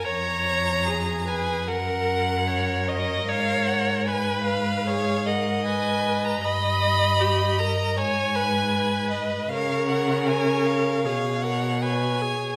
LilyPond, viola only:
\new Staff \with { instrumentName = "Viola" } { \time 4/4 \key gis \dorian \tempo 4 = 77 cis''4 gis'8 b'8 ais'4 cis''8 dis''8 | cis''4 b'4 gis'8 ais'8 b'4 | dis''4 g'8 ais'8 cis''8 b'4. | ais'2 gis'8 ais'8 b'8 gis'8 | }